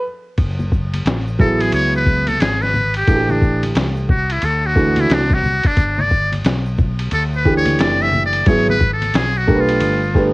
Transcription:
0.38 F#1, kick, ride, shaker
0.59 high conga, shaker
0.72 kick, shaker
0.94 ride, high conga, shaker
1.05 A1, snare, hi-hat pedal, ride, shaker
1.27 shaker
1.39 F#3 B3 E4 G#4 A4, kick, low conga, shaker
1.60 G#4, ride, shaker
1.72 C#2 C#5, ride, shaker
1.95 B4, shaker
2.06 kick, shaker
2.27 A4, ride, high conga, shaker
2.40 G#1 G#4, snare, hi-hat pedal, ride, shaker
2.61 B4, snare, shaker
2.74 high conga, low conga, shaker
2.94 G4, ride, shaker
3.07 A1 E3 A3 D4 F#4, kick, ride, shaker
3.15 G4
3.29 D4, high conga, shaker
3.42 kick, shaker
3.63 ride, high conga, shaker
3.75 C2, snare, hi-hat pedal, ride, shaker
3.96 shaker
4.09 F#4, kick, low conga, shaker
4.29 E4, ride, shaker
4.41 D2 A4, ride, shaker
4.63 F#4, shaker
4.76 E3 A3 D4 F#4, kick, shaker
4.96 ride, high conga, shaker
5.00 E4
5.10 C2 D4, snare, hi-hat pedal, ride, shaker
5.31 F#4, kick, snare, shaker
5.44 high conga, low conga, shaker
5.64 D4, muted fretless electric bass stroke, kick, ride, shaker
5.77 G1, kick, ride, shaker
5.98 D5, high conga, shaker
6.10 kick, shaker
6.32 ride, high conga, shaker
6.44 B1, snare, hi-hat pedal, ride, shaker
6.65 shaker
6.78 kick, low conga, shaker
6.99 ride, shaker
7.11 D2 A4, ride, shaker
7.33 B4, shaker
7.45 E3 A3 D4 G4, kick, shaker
7.57 C#5
7.65 ride, high conga, shaker
7.79 F#1 D5, snare, hi-hat pedal, ride, shaker
8.01 E5, snare, shaker
8.13 high conga, low conga, shaker
8.25 D5
8.33 ride, shaker
8.46 G#1 F#3 B3 E4 G#4 C#5, kick, ride, shaker
8.68 B4, high conga, shaker
8.80 kick, low conga, shaker
8.93 A4
9.02 ride, high conga, shaker
9.14 B1 G#4, snare, hi-hat pedal, ride, shaker
9.35 F#4, shaker
9.47 A3 D4 G4 A#4, kick, low conga, shaker
9.55 B4
9.61 F4
9.69 ride, shaker
9.80 G1, ride, shaker
10.03 shaker
10.14 A3 D4 G4 B4, kick, snare, shaker

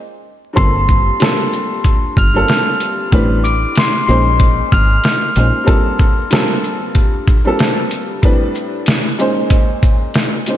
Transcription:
0.53 G2 G3 A#3 C4 F4 A4 C6, kick, closed hi-hat
0.57 G1 C7
0.89 kick, shaker
1.19 G2 G3 A#3 C4 F4 A4, snare, closed hi-hat
1.53 shaker
1.84 kick, closed hi-hat
2.17 G1 F6 F7, kick, shaker
2.34 G2 G3 A#3 C4 F4 A4
2.48 snare, closed hi-hat
2.80 closed hi-hat, shaker
3.12 A1 A2 G3 C4 D4 B4, kick, closed hi-hat
3.44 D6 D7, shaker
3.75 C6, snare, closed hi-hat
3.80 C7
4.07 A#1 A#2 G#3 C#4 D#4 C5 C6 C7, shaker
4.40 kick, closed hi-hat
4.72 G#1 F6 F7, kick, shaker
5.04 snare, closed hi-hat
5.36 A#1 A#2 G#3 C#4 D#4 C5, closed hi-hat, shaker
5.64 G2 G3 A#3 C4 F4 A4, kick, closed hi-hat
5.99 kick, shaker
6.30 G2 G3 A#3 C4 F4 A4, snare, closed hi-hat
6.63 shaker
6.95 kick, closed hi-hat
7.27 kick, shaker
7.45 G2 G3 A#3 C4 F4 A4
7.59 snare, closed hi-hat
7.91 closed hi-hat, shaker
8.22 A2 G3 C4 D4 B4, kick, closed hi-hat
8.55 shaker
8.86 snare, closed hi-hat
9.18 A#2 G#3 C#4 D#4 C5, shaker
9.50 kick, closed hi-hat
9.83 kick, closed hi-hat, shaker
10.14 snare, closed hi-hat
10.46 A#2 G#3 C#4 D#4 C5, closed hi-hat, shaker

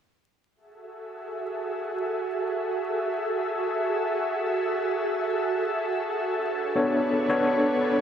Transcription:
0.56 F#4 G#4 A4 E5
6.30 D4 B4 C#5
6.76 B3 D4 A4 C#5
7.30 B3 D4 A4 C#5

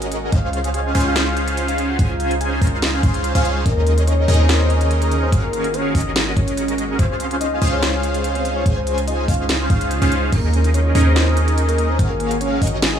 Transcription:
Already playing: G#1 G#3 C#4 F#4 G#4 A#4 D#5
0.02 closed hi-hat
0.12 closed hi-hat
0.32 C#2 C#3 C#4 D#4 F4 G#4 C5 F5, kick, closed hi-hat
0.53 closed hi-hat
0.64 closed hi-hat
0.74 G#5, closed hi-hat
0.95 C#2 C#4 F4 G#4 C5 F5, open hi-hat
1.00 closed hi-hat
1.06 F5
1.16 snare, closed hi-hat
1.37 closed hi-hat
1.48 closed hi-hat
1.57 closed hi-hat
1.68 F5, closed hi-hat
1.78 closed hi-hat
1.89 F#5
1.99 C#2 C#4 F4 G#4 C5 G#5, kick, closed hi-hat
2.10 F5
2.20 closed hi-hat
2.31 closed hi-hat
2.41 G#5, closed hi-hat
2.61 C#2 C#4 F4 G#4 C5 F5 A#5, kick, open hi-hat
2.67 closed hi-hat
2.82 snare, closed hi-hat
3.03 C#2 C#4 F4 G#4 C5 F5 C6, kick, closed hi-hat
3.14 closed hi-hat
3.24 closed hi-hat
3.35 C#2 C#4 F4 G#4 C5 F5, closed hi-hat
3.45 closed hi-hat
3.65 D#2 D#3 A#3 C#4 D#4 G#4 A#4 D#5, kick, closed hi-hat
3.87 closed hi-hat
3.98 closed hi-hat
4.07 C#5, closed hi-hat
4.28 D#2 C#4 D#4 G#4 A#4 D#5, open hi-hat
4.34 closed hi-hat
4.39 C5
4.49 snare, closed hi-hat
4.70 closed hi-hat
4.81 closed hi-hat
4.91 closed hi-hat
5.02 A#4, closed hi-hat
5.12 closed hi-hat
5.23 C5
5.32 G#1 G#3 C#4 F#4 G#4 A#4 F5, kick, closed hi-hat
5.43 A#4
5.53 closed hi-hat
5.64 closed hi-hat
5.74 C#5, closed hi-hat
5.95 G#1 C#4 F#4 G#4 A#4 D#5, kick, open hi-hat
6.00 closed hi-hat
6.16 snare, closed hi-hat
6.37 C#5, kick, closed hi-hat
6.48 closed hi-hat
6.57 closed hi-hat
6.68 closed hi-hat
6.78 closed hi-hat
6.99 C#2 C#3 G#3 C#4 D#4 F4 G#4 C5 F5, kick, closed hi-hat
7.20 closed hi-hat
7.31 closed hi-hat
7.41 D#5, closed hi-hat
7.62 C#2 C#4 F4 G#4 C5 F5, open hi-hat
7.67 closed hi-hat
7.73 C#5
7.83 snare, closed hi-hat
8.03 closed hi-hat
8.14 closed hi-hat
8.24 closed hi-hat
8.35 C5, closed hi-hat
8.45 closed hi-hat
8.56 C#5
8.66 C#2 C#4 F4 G#4 C5 G#5, kick, closed hi-hat
8.77 C5
8.87 closed hi-hat
8.98 closed hi-hat
9.07 D#5, closed hi-hat
9.28 C#2 C#4 F4 G#4 C5 F5, kick, open hi-hat
9.34 closed hi-hat
9.49 snare, closed hi-hat
9.70 C#2 C#4 F4 G#4 C5 F5, kick, closed hi-hat
9.81 closed hi-hat
9.91 closed hi-hat
10.02 C#2 C#4 F4 G#4 C5 F5, closed hi-hat
10.12 closed hi-hat
10.32 D#2 D#3 A#3 C#4 D#4 G#4 A#4 D#5, kick, closed hi-hat, crash
10.53 closed hi-hat
10.64 closed hi-hat
10.74 C#5, closed hi-hat
10.95 D#2 C#4 D#4 G#4 A#4 D#5, open hi-hat
11.01 closed hi-hat
11.06 C5
11.16 snare, closed hi-hat
11.37 closed hi-hat
11.48 closed hi-hat
11.58 closed hi-hat
11.69 A#4, closed hi-hat
11.78 closed hi-hat
11.89 C5
11.99 G#1 G#3 C#4 F#4 G#4 A#4 F5, kick, closed hi-hat
12.10 A#4
12.20 closed hi-hat
12.31 closed hi-hat
12.41 C#5, closed hi-hat
12.62 G#1 C#4 F#4 G#4 A#4 D#5, kick, open hi-hat
12.67 closed hi-hat
12.82 snare, closed hi-hat

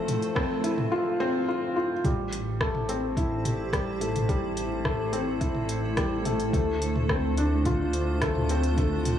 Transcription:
Already playing: F1 F3 A3 C4 E4 F4 B4
0.08 closed hi-hat, mid tom
0.22 closed hi-hat
0.35 C4, kick, cross-stick
0.64 E4, closed hi-hat
0.78 mid tom
0.92 F4
1.20 C4
1.48 F4
1.76 F4
2.04 A1 G3 A3 E4 G4 C5, kick, closed hi-hat, mid tom
2.33 closed hi-hat
2.61 A3, kick, cross-stick
2.75 mid tom
2.89 C4, closed hi-hat
3.17 E4, kick, closed hi-hat
3.45 closed hi-hat, mid tom
3.73 G3, kick, cross-stick, closed hi-hat
4.01 A3, closed hi-hat
4.16 closed hi-hat, mid tom
4.29 G3 A4, kick, closed hi-hat
4.57 closed hi-hat
4.85 A3, kick, cross-stick, mid tom
5.13 C4, closed hi-hat
5.41 E4, kick, closed hi-hat
5.55 mid tom
5.69 closed hi-hat
5.97 G3, kick, cross-stick, closed hi-hat
6.25 A3, closed hi-hat, mid tom
6.40 closed hi-hat
6.53 D2 A3 D4 F4 C5, kick, closed hi-hat
6.82 closed hi-hat
6.96 mid tom
7.09 C4, kick, cross-stick
7.37 D4, closed hi-hat
7.65 F4, kick, closed hi-hat, mid tom
7.93 closed hi-hat
8.22 A3, kick, cross-stick, closed hi-hat
8.35 mid tom
8.49 C4, closed hi-hat
8.63 closed hi-hat
8.78 A3, kick, closed hi-hat
9.05 closed hi-hat, mid tom

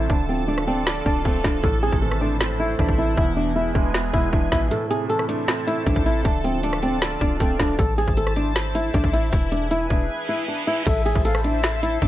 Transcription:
Already playing: A2 C3 E3 A3 C4
0.09 D1 D3 D4 F4 A4 D5 A5, kick
0.29 F3 C4
0.48 A3 D4
0.58 cross-stick
0.67 C4 D4
0.87 D5, snare
1.06 D1 D4, kick
1.25 D1 A3 C4, kick
1.44 D1 F3 D4, kick, snare
1.63 A1 A2 E4 A4 C5, kick
1.83 C3 G#4
1.92 G#1, kick
2.02 E3 A4
2.11 cross-stick
2.21 A3 D4
2.41 C4, snare
2.60 A3 E4
2.79 A1 E3 D4, kick
2.88 kick
2.98 C3 E4
3.17 E1 E2 E4 G#4 B4 G#5, kick
3.37 B2 D4
3.56 E3 E4
3.75 E1 G#3 D4, kick
3.94 B3, snare
4.13 E1 G#3 E4, kick
4.33 E1 E3 D4, kick
4.52 A1 B2 E4, kick, snare
4.71 A2 E4 A4 C5 A5, closed hi-hat
4.90 C3 G#4, closed hi-hat
5.10 E3 A4, closed hi-hat
5.19 cross-stick
5.29 A3 D4, closed hi-hat
5.48 C4, snare, closed hi-hat
5.67 A3 E4, closed hi-hat
5.86 A1 E3 D4, kick, closed hi-hat
5.96 A1, kick
6.06 C3 E4, closed hi-hat
6.25 D1 D3 D4 F4 D5, kick, closed hi-hat
6.44 F3 C4, closed hi-hat
6.63 A3 D4, closed hi-hat
6.73 cross-stick
6.82 C4 D4, closed hi-hat
7.02 D5, snare, closed hi-hat
7.21 D1 D4, kick, closed hi-hat
7.40 D1 A3 C4, kick, closed hi-hat
7.59 D1 F3 D4, kick, snare, closed hi-hat
7.79 A1 E4 A4 C5 A5, kick, closed hi-hat
7.98 G#4, closed hi-hat
8.08 G#1, kick
8.17 A4, closed hi-hat
8.27 cross-stick
8.36 D4, closed hi-hat
8.56 snare, closed hi-hat
8.75 E4, closed hi-hat
8.94 A1 D4, kick, closed hi-hat
9.04 A1, kick
9.13 E4, closed hi-hat
9.33 E1 E4 G#4 B4 G#5, kick, closed hi-hat
9.52 D4, closed hi-hat
9.71 E4, closed hi-hat
9.90 E1 D4, kick, closed hi-hat
10.10 reverse cymbal
10.29 E4
10.48 D4
10.67 E4
10.86 A1 E4 A4 C5 E5 A5, kick, closed hi-hat, crash
11.06 G#4, closed hi-hat
11.15 A1, kick
11.25 A4 F5, closed hi-hat
11.35 cross-stick
11.44 D4 E5, closed hi-hat
11.63 snare, closed hi-hat
11.83 E4 E5, closed hi-hat
12.02 A1 D4, kick, closed hi-hat

